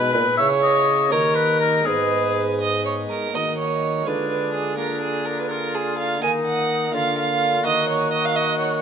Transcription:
Already playing: B2 G#3 B3 D#4 G#4 B4
0.14 A#2 B4
0.35 C#4 E4 G#4 C#5 E5
0.39 C#3
0.63 D#5
1.08 D#3 A#3 D#4 G4 A#4 C#5
1.12 D#3
1.35 B4
1.60 A#4
1.80 G#3 B3 D#4
1.85 G#2 G#4 B4
2.61 D#5
2.85 C#5
3.10 A#4
3.30 A#3 D#4 F#4
3.34 D#3 D#5
3.57 C#5
4.02 G#3 F4 G#4
4.06 D3 D4 B4
4.29 B4
4.54 G#4
4.74 A#3 F4 G#4
4.78 D4 A#4
5.01 G#4
5.26 A#4
5.39 B4
5.50 F4 A#4
5.74 G#4
5.98 F5
6.18 A#3 D#4 A#4
6.23 D#3 G#5
6.47 F#5
6.90 A#3 F4 A#4
6.94 D3 F4 F5
7.18 F5
7.60 A#3 F#4 A#4
7.64 D#3 F#4 D#5
7.89 C#5
8.13 D#5
8.25 F5
8.36 D#5
8.59 C#5

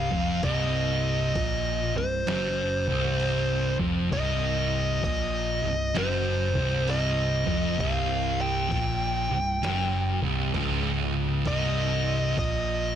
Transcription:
Already playing: C2 F5
0.12 F1 F2, kick
0.43 C1 C2 D#5, kick, crash
1.35 A#1 A#2, kick, crash
1.96 C1 C2 C5
2.27 F#1 F#2, snare, crash
2.88 C1 C2, kick
3.05 snare
3.20 crash
3.79 F1 F2, kick
4.12 C1 C2 D#5, kick, crash
5.04 A#1 A#2 D#5, kick, crash
5.64 C1 C2
5.95 F#1 F#2 C5, snare, crash
6.55 C1 C2, kick
6.88 D#5, crash
7.47 F1 F2, kick
7.79 C1 C2 F5, kick, crash
8.41 G5
8.71 A#1 A#2, kick, crash
9.31 C1 C2
9.63 F#1 F#2, snare, crash
10.22 C1 C2, kick
10.54 C#1 C#2, kick, crash
11.45 C1 C2 D#5, kick, crash
12.38 A#1 A#2 D#5, kick, crash

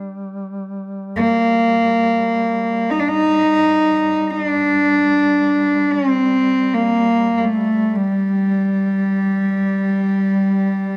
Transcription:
Already playing: G3
1.16 A#3
2.90 D#4
3.00 D4
3.08 D#4
4.31 D#4
4.43 D4
5.91 C#4
6.09 C4
6.74 A#3
7.37 A#3
7.44 A3
7.96 G3

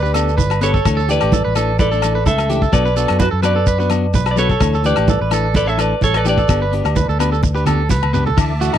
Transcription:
Already playing: D2 B4 D5
0.03 D4 G4 B4, shekere
0.14 B3 D4 G4 A4, cross-stick, closed hi-hat, muted conga, low agogo, shekere
0.29 shekere
0.38 G1 B4, kick, high conga, shekere
0.50 cross-stick, low agogo, shekere
0.61 B3 D4 G4 A4 B4 C#5, closed hi-hat, shekere
0.74 A4, kick, shekere
0.85 D2 E3 A3 D4 A4, kick, cross-stick, muted conga, low agogo, shekere
0.97 A4, shekere
1.08 E3 A3 D4 G4 A4 B4 D5, closed hi-hat, shekere
1.21 A1 A3 D4 G4 A4, cross-stick, low agogo
1.32 A4, kick, high conga, shekere
1.45 A1 B4
1.55 E3 A3 D4 A4, cross-stick, closed hi-hat, low agogo, shekere
1.79 A4 B4 D5, kick, muted conga, high conga, shekere
1.91 A3 D4 A4, shekere
2.02 E3 A3 D4 A4, cross-stick, closed hi-hat, muted conga, low agogo, shekere
2.15 B4
2.26 C#2 A4 E5, kick, high conga, shekere
2.38 cross-stick, low agogo, shekere
2.49 E3 A3 D4 G4 A4, closed hi-hat, shekere
2.62 A4, kick, shekere
2.72 B1 F#3 B3 D4 F#4 B4 D5, kick, cross-stick, muted conga, low agogo, shekere
2.86 B4, shekere
2.96 F#3 B3 D4 F#4 A4, closed hi-hat, shekere
3.08 F#2 B3 D4 F#4, cross-stick, low agogo
3.19 F#4 B4, kick, high conga, shekere
3.31 F#2 A4
3.42 F#3 B3 D4 F#4 B4 D5, cross-stick, closed hi-hat, low agogo, shekere
3.56 A4
3.67 B4, kick, muted conga, shekere
3.78 B3 D4 F#4 B4, shekere
3.89 F#3 B3 D4 F#4, muted clean electric guitar stroke, cross-stick, closed hi-hat, muted conga, low agogo, shekere
4.14 B1 B4, kick, high conga, shekere
4.26 cross-stick, low agogo, shekere
4.31 D5
4.36 F#3 B3 D4 F#4 A4 B4 C#5, closed hi-hat, shekere
4.50 A4, kick, shekere
4.60 D2 E3 A3 D4 A4, kick, cross-stick, muted conga, low agogo, shekere
4.74 A4, shekere
4.83 E3 A3 D4 G4 A4 B4 D5, closed hi-hat, shekere
4.96 A1 A3 D4 G4 A4, cross-stick, low agogo
5.08 A4, kick, high conga, shekere
5.21 A1 B4
5.31 E3 A3 D4 A4, cross-stick, closed hi-hat, muted conga, low agogo, shekere
5.54 A4 B4 D5, kick, muted conga, high conga, shekere
5.66 A3 D4 A4 C#5 E5, shekere
5.77 E3 A3 D4 A4 B4 D5, cross-stick, closed hi-hat, muted conga, low agogo, shekere
6.01 A1 A4 C#5, kick, high conga, shekere
6.14 B4 D5, cross-stick, low agogo, shekere
6.25 E3 A3 D4 G4 A4 B4, closed hi-hat, shekere
6.29 D5
6.38 A4, kick, shekere
6.48 G1 B3 D4 G4, kick, cross-stick, muted conga, low agogo, shekere
6.62 B4
6.72 B3 D4 G4, closed hi-hat
6.84 D2 D4 G4, cross-stick, low agogo
6.96 B4, kick, high conga, shekere
7.08 D2 A4, shekere
7.19 B3 D4 G4 B4, cross-stick, closed hi-hat, muted conga, low agogo, shekere
7.32 A4, shekere
7.43 muted clean electric guitar stroke, kick, muted conga, low conga, shekere
7.55 D4 G4 B4, shekere
7.65 B3 D4 G4 A4, cross-stick, closed hi-hat, muted conga, low conga, low agogo, shekere
7.89 C#2 B4, kick, snare, high conga, shekere
8.03 high tom, low agogo
8.13 B3 D4 G4 B4, mid tom, shekere
8.26 A4, floor tom
8.37 D2 E3 A3 D4 A4 E5 A5 D6, kick, cross-stick, crash, muted conga, low agogo, shekere
8.60 E3 A3 D4 F#4 A4, closed hi-hat, shekere
8.73 A1 D4 D#4 A4, cross-stick, low agogo

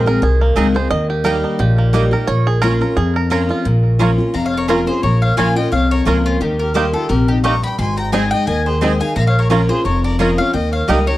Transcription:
Already playing: A#1 G#2 A#3 A#4
0.06 C4 G#4 A#4
0.22 C2 D#3 G#4
0.41 A#3
0.56 C#2 D#3 G#3 C4 D#4 G#4 D#5 A#5
0.74 C4 G#4 C5
0.90 D#2 D#3 D#5
1.10 G4
1.24 G3 A#3 D#4 G4 A#4 D#5 G5
1.44 D#4
1.59 A#1 A#2 G4
1.78 A#3
1.93 G3 A#3 D#4 G4 D#5 G5
2.11 D#4 G4 A#4
2.27 A#1 A#2 C#5
2.47 G#4
2.62 F3 A#3 C#4 F4 A#4 C#5 A#5
2.81 C#4 F4 A#4
2.97 F2 G#4
3.16 A#4
3.30 F3 A#3 C#4 F4 A#4 C#5 A#5
3.49 C#4 F4
3.65 A#1 A#2
3.99 F3 A#3 C#4 F4 C#5 A#5
4.18 C#4 F4
4.34 F1 F2 F5 A#5
4.46 C#5 F5
4.57 A#4 C#5
4.68 F3 A#3 C#4 F4 A#4 C#5 A#5
4.86 C#4 F4 G#4 C5
5.03 A#1 A#2 A#4 C#5
5.22 C#5 F5
5.37 A#1 F3 A#3 C#4 F4 C#5 F5 G#5 A#5
5.56 C#4 F4 D#5 G5
5.72 C2 F2 C#5 F5
5.90 A#4 C#5
6.05 C#2 F3 A#3 C#4 F4 A#4 C#5 A#5
6.25 C#4 F4
6.41 D#2 D#3 D#4 G4
6.59 G4 A#4
6.74 G3 A#3 D#4 G4 C5 D#5 G5
6.93 D#4 F4 G4 A4
7.09 A#1 C3 G4 A#4
7.28 D#4 G4
7.44 G2 A#3 D#4 G4 D#5 G5 A#5 C#6
7.63 G5 B5
7.79 G#1 G#2 G#5 C6
7.97 G5 A#5
8.12 G#3 C4 D#4 G#4 D#5 G#5
8.31 D#4 G#4 D#5 G5
8.47 D#2 D#3 D#5 G#5
8.66 G#4 C5
8.81 G#3 C4 D#4 G#4 C5 D#5 G#5
9.00 D#4 G#4 F5 G#5
9.16 A#1 A#2 F5 A#5
9.27 C#5 F5
9.39 A#4 C#5
9.50 F3 A#3 C#4 F4 A#4 C#5 A#5
9.69 C#4 F4 G#4 C5
9.85 F1 F2 A#4 C#5
10.04 A#4 D5
10.19 F3 A#3 C#4 F4 A#4 C#5 D#5 A#5
10.38 C#4 F4 C#5 F5
10.53 D#2 D#3 D#5 G5
10.73 C#5 F5
10.88 C#2 G3 A#3 D#4 G4 A#4 D#5 G5
11.06 D#4 G4 A#4 C#5

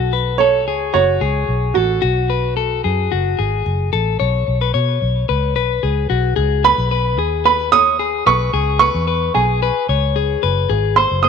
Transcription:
Already playing: B1 F#4
0.13 B4
0.38 A4 C#5
0.67 C#2 G#4
0.94 F#1 F#4 C#5
1.21 C#2 G#4
1.48 B1
1.74 A1 F#4 A4
2.02 B1 F#4
2.30 B4
2.57 A4
2.84 F#2 G#4
3.12 F#1 F#4
3.39 G#1 G#4
3.66 F#1
3.93 A1 A4
4.20 B1 C#5
4.48 B1
4.61 B4
4.74 B2 C#5
5.02 B1
5.29 C#2 B4
5.56 B1 B4
5.83 C#2 G#4
6.10 B1 F#4
6.36 C#2 G#4
6.64 B4 B5
6.78 B1
6.91 B4
7.18 D#2 G#4
7.45 B4 B5
7.72 C#5 D#6
7.99 G#4
8.26 B1 B4 C#6
8.54 C#2 G#4
8.79 B4 C#6
8.95 E2
9.07 B4
9.34 B1 G#4 G#5
9.63 B4
9.89 C#2 C#5
10.16 G#4
10.43 F#1 B4
10.70 G#1 G#4
10.96 C5 C6
11.11 F#1
11.23 C5 D#6

